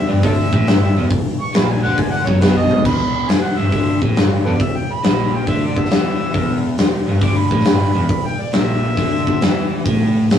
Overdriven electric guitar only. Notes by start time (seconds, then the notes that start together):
0.09 G2
0.23 D3
0.52 A2
0.68 G2
0.97 E2
1.11 E2
1.54 A#2
1.84 D3
2.27 F#3
2.41 B2
2.85 E2
3.29 E2
3.58 G2
3.73 D3
4.02 A2
4.17 G2
4.47 E2
4.61 E2
5.04 A#2
5.48 D3
5.91 E3
6.35 E2
6.78 E2
7.08 G2
7.22 D3
7.51 A2
7.66 G2
7.95 E2
8.09 E2
8.53 A#2
8.97 D3
9.42 E3
9.85 A2
10.29 A2